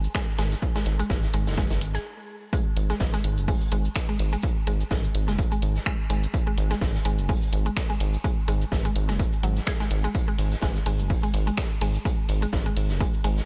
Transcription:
0.04 shaker
0.14 synth arpeggio sound G#3, finger snap, kick, snare, closed hi-hat
0.38 analog synth bass G#1, synth arpeggio sound G#3, snare, closed hi-hat
0.52 snare, shaker
0.62 kick, closed hi-hat
0.75 synth arpeggio sound G#3, snare, closed hi-hat, shaker
0.86 analog synth bass G#1, snare, closed hi-hat
0.99 synth arpeggio sound G#3, closed hi-hat, shaker
1.10 analog synth bass G#1, kick, snare, closed hi-hat
1.23 snare, shaker
1.34 analog synth bass G#1, synth arpeggio sound G#3, closed hi-hat
1.47 analog synth bass F#1, snare, closed hi-hat, shaker
1.52 snare, closed hi-hat
1.57 synth arpeggio sound G#3, kick, snare, closed hi-hat
1.70 snare, closed hi-hat, shaker
1.81 analog synth bass G#1, closed hi-hat
1.95 synth arpeggio sound G#4, snare, shaker
2.53 synth arpeggio sound G#3, kick, closed hi-hat
2.77 analog synth bass G#1, closed hi-hat
2.90 synth arpeggio sound G#3, snare, shaker
3.00 analog synth bass G#1, kick, snare, closed hi-hat
3.13 synth arpeggio sound G#3, snare, shaker
3.24 analog synth bass G#1, closed hi-hat
3.37 analog synth bass F#1, shaker
3.48 synth arpeggio sound G#3, kick, open hi-hat
3.61 shaker
3.72 analog synth bass G#1, synth arpeggio sound G#3, closed hi-hat
3.85 shaker
3.95 finger snap, kick, snare, closed hi-hat
4.09 synth arpeggio sound G#3
4.19 analog synth bass G#1, closed hi-hat
4.33 synth arpeggio sound G#3, closed hi-hat, shaker
4.42 kick, closed hi-hat
4.67 analog synth bass G#1, synth arpeggio sound G#3, closed hi-hat
4.80 shaker
4.91 analog synth bass G#1, synth arpeggio sound G#3, kick, snare, closed hi-hat
5.04 shaker
5.15 analog synth bass G#1, closed hi-hat
5.28 analog synth bass F#1, synth arpeggio sound G#3, snare, shaker
5.38 kick, closed hi-hat
5.51 synth arpeggio sound G#3, closed hi-hat, shaker
5.62 analog synth bass G#1, closed hi-hat
5.76 snare, shaker
5.86 synth arpeggio sound G#3, finger snap, kick
6.10 analog synth bass G#1, synth arpeggio sound G#3, closed hi-hat
6.23 shaker
6.33 kick, closed hi-hat
6.47 synth arpeggio sound G#3
6.58 analog synth bass G#1, closed hi-hat
6.71 synth arpeggio sound G#3, snare, shaker
6.81 analog synth bass G#1, kick, snare, closed hi-hat
6.95 snare, shaker
7.05 analog synth bass G#1, synth arpeggio sound G#3, closed hi-hat
7.18 analog synth bass F#1, shaker
7.28 synth arpeggio sound G#3, kick, open hi-hat
7.42 shaker
7.53 analog synth bass G#1, closed hi-hat
7.66 synth arpeggio sound G#3, shaker
7.77 finger snap, kick, snare, closed hi-hat
7.90 synth arpeggio sound G#3
8.00 analog synth bass G#1, closed hi-hat
8.14 closed hi-hat, shaker
8.24 synth arpeggio sound G#3, kick, closed hi-hat
8.48 analog synth bass G#1, synth arpeggio sound G#3, closed hi-hat
8.61 shaker
8.72 analog synth bass G#1, kick, snare, closed hi-hat
8.85 synth arpeggio sound G#3, closed hi-hat, shaker
8.96 analog synth bass G#1, closed hi-hat
9.09 analog synth bass F#1, synth arpeggio sound G#3, snare, shaker
9.19 kick, closed hi-hat
9.33 closed hi-hat, shaker
9.43 analog synth bass G#1, synth arpeggio sound F#3, closed hi-hat
9.56 snare, shaker
9.66 synth arpeggio sound G#4, finger snap, kick, snare, closed hi-hat
9.80 synth arpeggio sound G#3, snare, shaker
9.90 analog synth bass G#1, closed hi-hat
10.04 synth arpeggio sound G#3, shaker
10.15 kick, closed hi-hat
10.28 synth arpeggio sound G#3
10.38 analog synth bass G#1, closed hi-hat, ride
10.52 snare, shaker
10.62 analog synth bass G#1, synth arpeggio sound G#3, kick, snare, closed hi-hat
10.75 snare, shaker
10.86 analog synth bass G#1, synth arpeggio sound G#3, closed hi-hat, ride
10.99 analog synth bass F#1, shaker
11.09 kick, open hi-hat
11.23 synth arpeggio sound G#3, shaker
11.34 analog synth bass G#1, closed hi-hat, ride
11.47 synth arpeggio sound G#3, shaker
11.57 finger snap, kick, snare, closed hi-hat
11.81 analog synth bass G#1, synth arpeggio sound G#3, closed hi-hat, ride
11.95 closed hi-hat, shaker
12.05 synth arpeggio sound G#3, kick, closed hi-hat
12.28 analog synth bass G#1, closed hi-hat, ride
12.42 synth arpeggio sound G#3, shaker
12.53 analog synth bass G#1, kick, snare, closed hi-hat
12.66 synth arpeggio sound G#3, shaker
12.77 analog synth bass G#1, closed hi-hat, ride
12.90 analog synth bass F#1, snare, shaker
13.00 synth arpeggio sound G#3, kick, closed hi-hat
13.14 closed hi-hat, shaker
13.24 analog synth bass G#1, synth arpeggio sound G#3, closed hi-hat, ride
13.37 snare, shaker

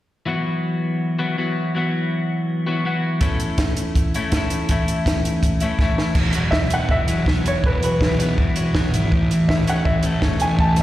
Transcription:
0.26 clean electric guitar E3 F#3 B3 F#4
1.19 clean electric guitar E3 F#3 B3 F#4
1.38 clean electric guitar E3 F#3 B3 F#4
1.75 clean electric guitar E3 F#3 B3 F#4
2.66 clean electric guitar E3 F#3 B3 F#4
2.85 clean electric guitar E3 F#3 B3 F#4
3.21 clean electric guitar A2 E3 A3 C#4 E4, kick, closed hi-hat
3.40 closed hi-hat
3.58 kick, snare, closed hi-hat
3.77 closed hi-hat
3.95 kick, closed hi-hat
4.14 clean electric guitar A2 E3 A3 C#4 E4, closed hi-hat
4.32 clean electric guitar A2 A3, kick, snare, closed hi-hat
4.36 clean electric guitar E3 C#4 E4
4.50 closed hi-hat
4.69 clean electric guitar A2 E3 A3 C#4 E4, kick, closed hi-hat
4.88 closed hi-hat
5.06 kick, snare, closed hi-hat
5.25 closed hi-hat
5.43 kick, closed hi-hat
5.60 clean electric guitar A2 E3 A3 C#4 E4, closed hi-hat
5.79 clean electric guitar A2 E3 A3 C#4 E4, kick, snare
5.98 snare
6.15 picked electric bass E1, clean electric guitar E3, kick, crash
6.33 picked electric bass E1, clean electric guitar F#3, closed hi-hat
6.51 picked electric bass E1, clean electric guitar E3, upright piano E5, kick, snare
6.70 clean electric guitar B3, upright piano F#5, closed hi-hat
6.89 picked electric bass E1, clean electric guitar E3, upright piano E5, kick
7.08 picked electric bass E1, clean electric guitar F#3, closed hi-hat
7.26 picked electric bass B1, clean electric guitar B3, kick, snare
7.46 picked electric bass E1, clean electric guitar E3, upright piano C#5, closed hi-hat
7.64 picked electric bass E1, clean electric guitar E3, upright piano B4, kick
7.82 picked electric bass E1, clean electric guitar F#3, upright piano B4, closed hi-hat
8.01 picked electric bass E1, clean electric guitar E3, kick, snare
8.20 clean electric guitar B3, closed hi-hat
8.38 picked electric bass E1, clean electric guitar E3, kick
8.56 picked electric bass E1, clean electric guitar F#3, closed hi-hat
8.75 picked electric bass B1, clean electric guitar B3, kick, snare
8.93 picked electric bass G#1, clean electric guitar E3, closed hi-hat
9.12 picked electric bass A1, clean electric guitar A2, kick
9.30 picked electric bass A1, closed hi-hat
9.34 clean electric guitar E3
9.48 picked electric bass A1, clean electric guitar E3, upright piano E5, kick, snare
9.67 clean electric guitar C#4, upright piano F#5, closed hi-hat
9.85 picked electric bass A1, clean electric guitar E3, upright piano E5, kick
10.03 picked electric bass A1, clean electric guitar A3, closed hi-hat
10.22 picked electric bass E1, clean electric guitar C#4, kick, snare
10.40 picked electric bass A1, clean electric guitar E3, upright piano G#5, closed hi-hat
10.59 picked electric bass A1, clean electric guitar A2, upright piano A5, kick
10.76 picked electric bass A1, snare, closed hi-hat

